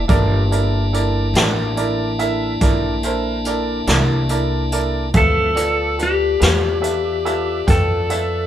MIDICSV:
0, 0, Header, 1, 6, 480
1, 0, Start_track
1, 0, Tempo, 842342
1, 50, Time_signature, 12, 3, 24, 8
1, 4825, End_track
2, 0, Start_track
2, 0, Title_t, "Upright piano"
2, 0, Program_c, 0, 0
2, 46, Note_on_c, 0, 64, 68
2, 47, Note_on_c, 0, 69, 67
2, 50, Note_on_c, 0, 70, 69
2, 51, Note_on_c, 0, 74, 79
2, 228, Note_off_c, 0, 64, 0
2, 228, Note_off_c, 0, 69, 0
2, 230, Note_off_c, 0, 70, 0
2, 230, Note_off_c, 0, 74, 0
2, 292, Note_on_c, 0, 64, 58
2, 294, Note_on_c, 0, 74, 58
2, 295, Note_on_c, 0, 69, 47
2, 296, Note_on_c, 0, 70, 52
2, 471, Note_off_c, 0, 64, 0
2, 472, Note_off_c, 0, 69, 0
2, 472, Note_off_c, 0, 74, 0
2, 473, Note_off_c, 0, 70, 0
2, 530, Note_on_c, 0, 69, 53
2, 532, Note_on_c, 0, 64, 54
2, 533, Note_on_c, 0, 70, 50
2, 536, Note_on_c, 0, 74, 63
2, 710, Note_off_c, 0, 69, 0
2, 711, Note_off_c, 0, 64, 0
2, 711, Note_off_c, 0, 70, 0
2, 713, Note_off_c, 0, 74, 0
2, 774, Note_on_c, 0, 69, 55
2, 776, Note_on_c, 0, 64, 58
2, 776, Note_on_c, 0, 70, 55
2, 776, Note_on_c, 0, 74, 67
2, 952, Note_off_c, 0, 64, 0
2, 952, Note_off_c, 0, 69, 0
2, 953, Note_off_c, 0, 70, 0
2, 953, Note_off_c, 0, 74, 0
2, 1007, Note_on_c, 0, 64, 58
2, 1008, Note_on_c, 0, 69, 52
2, 1010, Note_on_c, 0, 74, 67
2, 1011, Note_on_c, 0, 70, 52
2, 1188, Note_off_c, 0, 64, 0
2, 1189, Note_off_c, 0, 69, 0
2, 1189, Note_off_c, 0, 74, 0
2, 1190, Note_off_c, 0, 70, 0
2, 1247, Note_on_c, 0, 64, 59
2, 1249, Note_on_c, 0, 69, 50
2, 1249, Note_on_c, 0, 76, 67
2, 1250, Note_on_c, 0, 70, 52
2, 1428, Note_off_c, 0, 64, 0
2, 1429, Note_off_c, 0, 69, 0
2, 1429, Note_off_c, 0, 76, 0
2, 1430, Note_off_c, 0, 70, 0
2, 1487, Note_on_c, 0, 64, 59
2, 1491, Note_on_c, 0, 69, 54
2, 1492, Note_on_c, 0, 74, 64
2, 1493, Note_on_c, 0, 70, 55
2, 1668, Note_off_c, 0, 64, 0
2, 1670, Note_off_c, 0, 69, 0
2, 1671, Note_off_c, 0, 70, 0
2, 1671, Note_off_c, 0, 74, 0
2, 1733, Note_on_c, 0, 64, 55
2, 1733, Note_on_c, 0, 69, 54
2, 1736, Note_on_c, 0, 70, 52
2, 1736, Note_on_c, 0, 72, 67
2, 1911, Note_off_c, 0, 64, 0
2, 1911, Note_off_c, 0, 69, 0
2, 1913, Note_off_c, 0, 70, 0
2, 1913, Note_off_c, 0, 72, 0
2, 1973, Note_on_c, 0, 70, 51
2, 1974, Note_on_c, 0, 64, 54
2, 1975, Note_on_c, 0, 74, 62
2, 1976, Note_on_c, 0, 69, 49
2, 2152, Note_off_c, 0, 64, 0
2, 2152, Note_off_c, 0, 70, 0
2, 2153, Note_off_c, 0, 69, 0
2, 2153, Note_off_c, 0, 74, 0
2, 2207, Note_on_c, 0, 74, 62
2, 2208, Note_on_c, 0, 69, 53
2, 2209, Note_on_c, 0, 70, 53
2, 2210, Note_on_c, 0, 64, 58
2, 2388, Note_off_c, 0, 74, 0
2, 2389, Note_off_c, 0, 69, 0
2, 2389, Note_off_c, 0, 70, 0
2, 2390, Note_off_c, 0, 64, 0
2, 2450, Note_on_c, 0, 69, 50
2, 2451, Note_on_c, 0, 70, 54
2, 2452, Note_on_c, 0, 64, 56
2, 2452, Note_on_c, 0, 74, 57
2, 2630, Note_off_c, 0, 69, 0
2, 2630, Note_off_c, 0, 70, 0
2, 2631, Note_off_c, 0, 64, 0
2, 2631, Note_off_c, 0, 74, 0
2, 2693, Note_on_c, 0, 64, 52
2, 2693, Note_on_c, 0, 69, 52
2, 2694, Note_on_c, 0, 70, 51
2, 2694, Note_on_c, 0, 74, 62
2, 2871, Note_off_c, 0, 64, 0
2, 2871, Note_off_c, 0, 69, 0
2, 2872, Note_off_c, 0, 70, 0
2, 2872, Note_off_c, 0, 74, 0
2, 2927, Note_on_c, 0, 69, 57
2, 2930, Note_on_c, 0, 65, 58
2, 2934, Note_on_c, 0, 76, 66
2, 2935, Note_on_c, 0, 71, 54
2, 3109, Note_off_c, 0, 69, 0
2, 3110, Note_off_c, 0, 65, 0
2, 3112, Note_off_c, 0, 71, 0
2, 3112, Note_off_c, 0, 76, 0
2, 3167, Note_on_c, 0, 74, 52
2, 3168, Note_on_c, 0, 65, 46
2, 3168, Note_on_c, 0, 69, 43
2, 3168, Note_on_c, 0, 71, 42
2, 3349, Note_off_c, 0, 65, 0
2, 3349, Note_off_c, 0, 69, 0
2, 3349, Note_off_c, 0, 71, 0
2, 3349, Note_off_c, 0, 74, 0
2, 3407, Note_on_c, 0, 65, 45
2, 3413, Note_on_c, 0, 69, 43
2, 3413, Note_on_c, 0, 71, 43
2, 3413, Note_on_c, 0, 77, 53
2, 3589, Note_off_c, 0, 65, 0
2, 3591, Note_off_c, 0, 69, 0
2, 3592, Note_off_c, 0, 71, 0
2, 3592, Note_off_c, 0, 77, 0
2, 3646, Note_on_c, 0, 65, 51
2, 3647, Note_on_c, 0, 69, 43
2, 3649, Note_on_c, 0, 71, 45
2, 3651, Note_on_c, 0, 77, 54
2, 3828, Note_off_c, 0, 65, 0
2, 3829, Note_off_c, 0, 69, 0
2, 3830, Note_off_c, 0, 71, 0
2, 3831, Note_off_c, 0, 77, 0
2, 3884, Note_on_c, 0, 65, 51
2, 3885, Note_on_c, 0, 69, 44
2, 3886, Note_on_c, 0, 71, 48
2, 3886, Note_on_c, 0, 76, 57
2, 4067, Note_off_c, 0, 65, 0
2, 4068, Note_off_c, 0, 69, 0
2, 4068, Note_off_c, 0, 71, 0
2, 4068, Note_off_c, 0, 76, 0
2, 4131, Note_on_c, 0, 69, 52
2, 4132, Note_on_c, 0, 71, 51
2, 4134, Note_on_c, 0, 65, 58
2, 4134, Note_on_c, 0, 76, 65
2, 4311, Note_off_c, 0, 69, 0
2, 4311, Note_off_c, 0, 71, 0
2, 4312, Note_off_c, 0, 65, 0
2, 4312, Note_off_c, 0, 76, 0
2, 4371, Note_on_c, 0, 65, 50
2, 4371, Note_on_c, 0, 69, 46
2, 4371, Note_on_c, 0, 79, 57
2, 4372, Note_on_c, 0, 71, 46
2, 4551, Note_off_c, 0, 65, 0
2, 4551, Note_off_c, 0, 69, 0
2, 4551, Note_off_c, 0, 71, 0
2, 4551, Note_off_c, 0, 79, 0
2, 4614, Note_on_c, 0, 65, 47
2, 4614, Note_on_c, 0, 71, 47
2, 4616, Note_on_c, 0, 69, 44
2, 4617, Note_on_c, 0, 76, 53
2, 4792, Note_off_c, 0, 65, 0
2, 4793, Note_off_c, 0, 69, 0
2, 4793, Note_off_c, 0, 71, 0
2, 4794, Note_off_c, 0, 76, 0
2, 4825, End_track
3, 0, Start_track
3, 0, Title_t, "Electric slide guitar"
3, 0, Program_c, 1, 29
3, 2947, Note_on_c, 1, 69, 88
3, 3433, Note_off_c, 1, 69, 0
3, 3435, Note_on_c, 1, 67, 82
3, 4386, Note_off_c, 1, 67, 0
3, 4388, Note_on_c, 1, 69, 71
3, 4825, Note_off_c, 1, 69, 0
3, 4825, End_track
4, 0, Start_track
4, 0, Title_t, "Tonewheel organ"
4, 0, Program_c, 2, 16
4, 46, Note_on_c, 2, 81, 60
4, 47, Note_on_c, 2, 64, 59
4, 53, Note_on_c, 2, 58, 58
4, 53, Note_on_c, 2, 62, 62
4, 2905, Note_off_c, 2, 81, 0
4, 2906, Note_off_c, 2, 64, 0
4, 2909, Note_off_c, 2, 58, 0
4, 2909, Note_off_c, 2, 62, 0
4, 2936, Note_on_c, 2, 69, 56
4, 2941, Note_on_c, 2, 54, 54
4, 2943, Note_on_c, 2, 60, 54
4, 2943, Note_on_c, 2, 65, 51
4, 3148, Note_off_c, 2, 69, 0
4, 3155, Note_off_c, 2, 65, 0
4, 3155, Note_on_c, 2, 69, 61
4, 3161, Note_on_c, 2, 59, 57
4, 3161, Note_on_c, 2, 74, 61
4, 3162, Note_on_c, 2, 65, 59
4, 3175, Note_off_c, 2, 54, 0
4, 3176, Note_off_c, 2, 60, 0
4, 4825, Note_off_c, 2, 59, 0
4, 4825, Note_off_c, 2, 65, 0
4, 4825, Note_off_c, 2, 69, 0
4, 4825, Note_off_c, 2, 74, 0
4, 4825, End_track
5, 0, Start_track
5, 0, Title_t, "Upright bass"
5, 0, Program_c, 3, 32
5, 49, Note_on_c, 3, 31, 72
5, 748, Note_off_c, 3, 31, 0
5, 762, Note_on_c, 3, 33, 82
5, 1464, Note_off_c, 3, 33, 0
5, 1490, Note_on_c, 3, 34, 70
5, 2188, Note_off_c, 3, 34, 0
5, 2205, Note_on_c, 3, 36, 73
5, 2906, Note_off_c, 3, 36, 0
5, 2930, Note_on_c, 3, 38, 71
5, 3629, Note_off_c, 3, 38, 0
5, 3654, Note_on_c, 3, 40, 77
5, 4351, Note_off_c, 3, 40, 0
5, 4373, Note_on_c, 3, 41, 69
5, 4825, Note_off_c, 3, 41, 0
5, 4825, End_track
6, 0, Start_track
6, 0, Title_t, "Drums"
6, 52, Note_on_c, 9, 36, 93
6, 54, Note_on_c, 9, 42, 68
6, 109, Note_off_c, 9, 36, 0
6, 111, Note_off_c, 9, 42, 0
6, 297, Note_on_c, 9, 42, 50
6, 354, Note_off_c, 9, 42, 0
6, 537, Note_on_c, 9, 42, 50
6, 594, Note_off_c, 9, 42, 0
6, 770, Note_on_c, 9, 42, 68
6, 777, Note_on_c, 9, 38, 95
6, 827, Note_off_c, 9, 42, 0
6, 834, Note_off_c, 9, 38, 0
6, 1009, Note_on_c, 9, 42, 55
6, 1066, Note_off_c, 9, 42, 0
6, 1249, Note_on_c, 9, 42, 52
6, 1306, Note_off_c, 9, 42, 0
6, 1487, Note_on_c, 9, 42, 75
6, 1489, Note_on_c, 9, 36, 73
6, 1544, Note_off_c, 9, 42, 0
6, 1546, Note_off_c, 9, 36, 0
6, 1727, Note_on_c, 9, 42, 53
6, 1784, Note_off_c, 9, 42, 0
6, 1965, Note_on_c, 9, 42, 52
6, 2022, Note_off_c, 9, 42, 0
6, 2207, Note_on_c, 9, 42, 75
6, 2214, Note_on_c, 9, 38, 93
6, 2264, Note_off_c, 9, 42, 0
6, 2271, Note_off_c, 9, 38, 0
6, 2444, Note_on_c, 9, 42, 56
6, 2501, Note_off_c, 9, 42, 0
6, 2689, Note_on_c, 9, 42, 55
6, 2746, Note_off_c, 9, 42, 0
6, 2927, Note_on_c, 9, 42, 72
6, 2930, Note_on_c, 9, 36, 94
6, 2984, Note_off_c, 9, 42, 0
6, 2987, Note_off_c, 9, 36, 0
6, 3172, Note_on_c, 9, 42, 57
6, 3229, Note_off_c, 9, 42, 0
6, 3415, Note_on_c, 9, 42, 54
6, 3472, Note_off_c, 9, 42, 0
6, 3655, Note_on_c, 9, 42, 70
6, 3661, Note_on_c, 9, 38, 101
6, 3712, Note_off_c, 9, 42, 0
6, 3718, Note_off_c, 9, 38, 0
6, 3896, Note_on_c, 9, 42, 55
6, 3953, Note_off_c, 9, 42, 0
6, 4137, Note_on_c, 9, 42, 53
6, 4194, Note_off_c, 9, 42, 0
6, 4375, Note_on_c, 9, 36, 77
6, 4375, Note_on_c, 9, 42, 67
6, 4432, Note_off_c, 9, 36, 0
6, 4432, Note_off_c, 9, 42, 0
6, 4615, Note_on_c, 9, 42, 54
6, 4672, Note_off_c, 9, 42, 0
6, 4825, End_track
0, 0, End_of_file